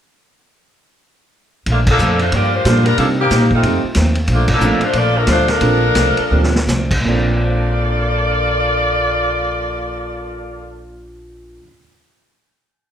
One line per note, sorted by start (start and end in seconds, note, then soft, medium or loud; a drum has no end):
1.66 1.98 A#1 medium
1.66 1.88 A#2 soft
1.66 1.89 F3 soft
1.66 1.89 A3 medium
1.66 1.90 D4 medium
1.66 kick soft
1.66 ride medium
1.72 1.80 A3 medium
1.72 1.80 A#3 medium
1.72 1.80 D4 medium
1.72 1.80 F4 medium
1.87 2.19 A#3 medium
1.87 2.19 A4 medium
1.87 kick medium
1.87 crash medium
1.91 2.19 F3 medium
1.91 2.19 D4 medium
1.98 2.30 F2 medium
1.98 2.21 A#2 medium
1.98 2.22 F3 medium
1.98 2.22 A3 medium
1.98 hi-hat pedal soft
2.03 2.22 D4 medium
2.19 2.32 A3 medium
2.19 2.32 D4 medium
2.19 2.32 F4 medium
2.19 2.32 C5 medium
2.19 ride soft
2.32 2.53 G2 soft
2.32 2.64 G2 medium
2.32 2.54 F3 soft
2.32 2.54 A#3 soft
2.32 2.54 A#3 medium
2.32 2.54 D4 soft
2.32 2.54 G4 medium
2.32 2.54 D5 medium
2.32 kick soft
2.32 ride medium
2.36 2.54 F4 medium
2.55 2.86 A#3 medium
2.55 2.84 F4 medium
2.55 2.86 G4 medium
2.55 2.86 C5 medium
2.65 2.86 G2 medium
2.65 2.96 A#2 medium
2.65 2.86 F3 medium
2.65 2.83 G3 medium
2.65 2.84 A#3 medium
2.65 2.87 A#3 medium
2.65 2.84 D4 medium
2.65 2.87 D4 medium
2.65 2.84 F4 medium
2.65 2.84 A4 medium
2.65 kick soft
2.65 snare medium
2.65 hi-hat pedal medium
2.65 ride medium
2.85 2.97 G3 medium
2.85 2.97 D4 medium
2.85 2.98 F4 medium
2.85 2.98 A#4 medium
2.85 ride soft
2.97 3.18 C3 soft
2.97 3.29 C3 medium
2.97 3.08 F3 medium
2.97 3.19 G3 soft
2.97 3.16 A#3 medium
2.97 3.08 A#3 medium
2.97 3.20 A#3 medium
2.97 3.16 C4 medium
2.97 3.16 D4 soft
2.97 3.07 D4 medium
2.97 3.16 D#4 soft
2.97 3.20 D#4 soft
2.97 3.16 G4 medium
2.97 3.08 A4 medium
2.97 kick soft
2.97 ride medium
3.20 3.49 D#3 medium
3.20 3.49 A#3 medium
3.20 3.49 C4 medium
3.20 3.49 G4 medium
3.30 3.62 A#2 medium
3.30 3.51 C3 medium
3.30 3.51 G3 medium
3.30 3.52 A#3 medium
3.30 3.52 D#4 medium
3.30 kick soft
3.30 snare medium
3.30 hi-hat pedal medium
3.30 ride medium
3.51 3.83 A3 medium
3.51 3.83 C4 medium
3.51 3.83 D#4 medium
3.51 3.82 F4 medium
3.51 kick medium
3.63 3.81 F2 medium
3.63 3.84 F2 soft
3.63 3.85 D#3 soft
3.63 3.81 A3 medium
3.63 3.85 A3 soft
3.63 3.81 C4 medium
3.63 3.85 C4 soft
3.63 3.81 D#4 medium
3.63 3.82 F4 soft
3.63 3.82 G4 medium
3.63 kick soft
3.63 ride medium
3.84 muted upright bass stroke soft
3.95 4.27 D#2 medium
3.95 4.16 F2 medium
3.95 4.17 D#3 medium
3.95 4.17 A3 medium
3.95 4.17 C4 medium
3.95 kick soft
3.95 snare medium
3.95 hi-hat pedal soft
3.95 ride medium
4.15 ride soft
4.27 4.59 A#1 medium
4.27 4.48 A#2 soft
4.27 4.49 F3 soft
4.27 4.50 A3 medium
4.27 4.50 D4 soft
4.27 kick soft
4.27 ride medium
4.33 4.49 A3 medium
4.33 4.49 A#3 medium
4.33 4.49 D4 medium
4.33 4.49 F4 medium
4.48 kick medium
4.48 crash medium
4.54 4.82 F3 medium
4.54 4.82 A#3 medium
4.54 4.82 D4 medium
4.54 4.82 A4 medium
4.59 4.78 A1 medium
4.59 4.82 A#2 medium
4.59 4.82 F3 medium
4.59 4.83 A3 medium
4.59 4.79 A#3 medium
4.59 4.79 C4 soft
4.59 4.79 D4 medium
4.59 4.83 D4 medium
4.59 4.79 F4 medium
4.59 4.79 A4 medium
4.59 hi-hat pedal medium
4.80 4.95 F4 medium
4.80 muted upright bass stroke soft
4.80 ride soft
4.84 4.95 A3 medium
4.84 4.95 D4 medium
4.84 4.95 C5 medium
4.93 5.26 A#1 medium
4.93 5.15 A#2 soft
4.93 5.16 F3 soft
4.93 5.16 A3 soft
4.93 5.17 D4 soft
4.93 kick soft
4.93 ride medium
4.98 5.16 A#3 medium
4.98 5.16 F4 medium
4.98 5.16 A4 medium
4.98 5.16 D5 loud
5.17 5.29 F3 medium
5.17 5.29 A3 medium
5.17 5.29 D4 medium
5.17 5.28 A#4 medium
5.27 5.60 D2 medium
5.27 5.49 A#2 medium
5.27 5.49 F3 medium
5.27 5.50 A3 medium
5.27 5.50 D4 medium
5.27 kick soft
5.27 snare medium
5.27 hi-hat pedal soft
5.27 ride medium
5.31 5.48 A3 medium
5.31 5.48 D4 medium
5.31 5.49 F4 medium
5.31 5.48 C5 medium
5.48 6.68 F3 medium
5.48 6.68 D4 medium
5.48 6.68 A4 medium
5.48 6.68 A#4 loud
5.48 snare soft
5.48 ride soft
5.60 5.94 A#1 medium
5.60 5.83 A#2 soft
5.60 5.83 F3 soft
5.60 5.84 A3 medium
5.60 5.80 A#3 medium
5.60 5.80 C4 medium
5.60 5.84 D4 medium
5.60 5.80 D4 medium
5.60 5.80 F4 medium
5.60 5.81 A4 medium
5.60 kick soft
5.60 ride medium
5.95 6.16 C2 medium
5.95 6.18 A#2 medium
5.95 6.18 F3 medium
5.95 6.19 A3 medium
5.95 6.19 D4 medium
5.95 kick soft
5.95 snare medium
5.95 hi-hat pedal medium
5.95 ride medium
6.17 muted upright bass stroke soft
6.17 ride soft
6.30 6.66 D2 medium
6.30 6.54 A#2 medium
6.30 6.55 F3 soft
6.30 6.55 A3 soft
6.30 6.51 A#3 medium
6.30 6.52 C4 soft
6.30 6.52 D4 soft
6.30 6.56 D4 medium
6.30 6.52 F4 soft
6.30 6.52 G4 medium
6.44 snare medium
6.56 snare medium
6.66 7.04 C2 medium
6.66 6.91 A#2 medium
6.66 6.92 F3 medium
6.66 6.92 A3 medium
6.66 6.92 D4 medium
6.66 snare medium
6.66 hi-hat pedal soft
6.91 kick medium
6.91 crash medium
7.00 11.59 A#2 medium
7.00 11.61 A#2 medium
7.04 11.57 A#1 medium
7.04 11.63 F3 medium
7.04 11.62 A#3 medium
7.04 10.88 A#3 medium
7.04 11.62 C4 medium
7.04 11.62 D4 soft
7.04 10.89 F4 medium
7.04 10.88 A4 medium
7.04 11.63 A4 medium
7.04 10.89 D5 medium
7.20 11.69 D4 medium
7.45 11.58 C5 soft
7.52 11.62 F5 soft
7.60 11.66 A5 soft
7.70 11.71 C6 soft
7.79 11.75 F6 soft
7.90 11.81 A6 soft
8.02 11.87 C7 soft